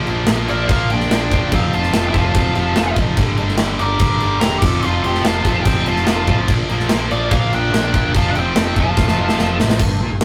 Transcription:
0.07 A#1 A#2 F3 A#3 D4, crash
0.26 A#1 A#2 F3 A#3 D4, snare, crash
0.47 A#1 A#2 F3 A#3 D4 D5, crash
0.67 A#1 A#2 F3 A#3 D4 F5, kick, crash
0.72 A#3
0.89 A#1 A#2 F3 A#3 D4 G5, crash
0.93 D4
1.01 snare
1.09 A#1 A#2 F3 A#3 D4, snare, crash
1.29 E1 A#2 F3 A#3 D4, kick, crash
1.50 F1 F2 C3 F3 A3 C4, kick, crash
1.55 C4 F5
1.71 F1 F2 C3 F3 A3 C4 F4 A5, crash
1.83 snare
1.92 F1 F2 C3 F3 A3 C4, snare, crash
2.07 E4 G5
2.13 F1 F2 C3 F3 A3 C4 A5, kick, crash
2.18 F4
2.34 F1 F2 C3 F3 A3 C4, kick, crash
2.55 F1 F2 C3 F3 A3 C4, crash
2.76 F1 F2 C3 F3 A3 C4, snare, crash
2.96 F1 F2 C3 F3 A3 C4, kick, crash
3.17 G1 G2 D3 G3 A#3 D4, kick, crash
3.37 G1 G2 D3 G3 A#3 D4, crash
3.49 snare
3.57 G1 G2 D3 G3 A#3 D4, snare, crash
3.79 G1 G2 D3 G3 A#3 D4 A#4 D6, crash
3.99 G1 G2 D3 G3 A#3 D4 A#4 D6, kick, crash
4.20 G1 G2 D3 G3 A#3 D4, crash
4.40 E1 G2 D3 G3 A#3 D4 G4 A#5, snare, crash
4.59 F1 F2 C3 D6, kick, crash
4.63 F3 A3 C4 A4
4.81 F1 F2 C3 F3 A3 C4 F4 C6, crash
5.03 F1 F2 C3 F3 A3 C4 G4 C6, crash
5.15 snare
5.21 F2 C3 F3 A3 C4 F4 A5, snare, crash
5.25 F1
5.44 F1 F2 C3 F3 A3 C4, kick, crash
5.62 F1 F2 C3 F3 A3 C4 G5, kick, crash
5.67 C4
5.85 F1 F2 C3 F3 A3 C4 F4 A5, crash
5.96 snare
6.05 F1 F2 C3 F3 A3 C4 A5, snare, crash
6.11 F4
6.26 A1 F2 C3 F3 A3 C4, kick, crash
6.46 A#1 A#2 F3 A#3 D4, kick, crash
6.68 A#1 A#2 F3 A#3 D4, crash
6.80 snare
6.88 A#1 A#2 F3 A#3 D4, snare, crash
7.08 A#1 A#2 F3 A#3 D4 D5, crash
7.30 A#1 A#2 F3 A#3 D4 F5, kick, crash
7.34 A#3
7.50 A#1 A#2 F3 A#3 D4 G5, crash
7.54 D4
7.71 A#1 A#2 F3 A#3 D4, snare, crash
7.92 E1 A#2 F3 A#3 D4, kick, crash
8.14 F1 F2 C3 F3 A3 C4 F4 A5, kick, crash
8.27 D4 F5
8.34 F1 F2 C3 F3 A3 C4 G5, crash
8.39 C4
8.54 F1 F2 C3 F3 A3 C4, snare, crash
8.76 F1 F2 C3 F3 A3 C4 F4 A5, kick, crash
8.96 F1 F2 C3 F3 A3 C4, kick, snare
9.08 snare
9.17 F1 F2 C3 F3 A3 C4
9.29 snare
9.38 F1 F2 C3 F3 A3 C4, snare
9.58 A1 F2 C3 F3 A3 C4, snare
9.70 snare
9.79 G1 G2, kick, crash
9.99 A#1 A#2
10.09 G1 G2
10.20 D#2 D#3, snare, crash

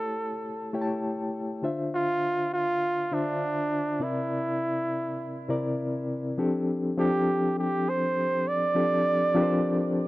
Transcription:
Already playing: A3 E4 G4 A4 C#5 A5
0.73 A3 E4 G4 C#5 G5
0.82 A5
1.62 D3 D4 F4 C5 E5
1.95 F4
2.54 F4
3.11 D3 D4 F4 C5 E5
4.00 C3 C4 E4 A#4 D5
5.48 C3 C4 E4 A#4 D5
6.38 F3 C4 D4 G4 A4
6.97 F3 C4 D4 G4 A4
7.59 G4
7.89 C5
8.48 D5
8.75 F3 C4 D4 G4 A4
9.34 F3 C4 D4 G4 A#4
9.43 C5

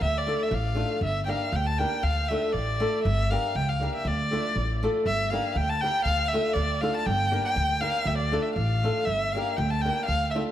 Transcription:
0.01 D2 E5
0.18 D5
0.27 A3 D4 F4 A4
0.43 E5
0.51 A1 F5
0.75 A3 D4 F4 A4
1.01 G1 E5
1.25 A#3 D4 G4 A#4 F5 G5
1.52 D2 G5
1.66 A5
1.78 A#3 D4 G4 A#4 G5
2.03 D2 F5
2.28 A3 D4 F4 A4 E5
2.52 A1 D5
2.80 A3 D4 F4 A4
3.04 G1 E5
3.30 A#3 D4 G4 A#4 F5
3.55 C#2 G5
3.69 F5
3.80 A#3 D4 G4 A#4
3.95 E5
4.05 D2 D5
4.31 A3 D4 F4 A4
4.56 A1
4.83 A3 D4 F4 A4
5.06 G1 E5
5.30 A#3 D4 G4 A#4 F5
5.55 D2 G5
5.69 A5
5.81 A#3 D4 G4 A#4 G5
6.05 D2 F5
6.28 E5
6.33 A3 D4 F4 A4
6.54 D2 D5
6.82 A3 D4 F4 A4 F5
6.96 A5
7.06 G1 G5
7.31 A#3 D4 G4 A#4
7.45 G5
7.56 D2
7.80 A#3 D4 G4 A#4 F5
8.05 D2 E5
8.18 D5
8.31 A3 D4 F4 A4
8.43 E5
8.54 A1 F5
8.83 A3 D4 F4 A4
9.05 G1 E5
9.32 A#3 D4 F5
9.37 G4 A#4
9.57 D2 G5
9.70 A5
9.81 A#3 D4 G5
9.86 G4 A#4
10.06 D2 F5
10.31 E5
10.35 A3 D4 F4 A4

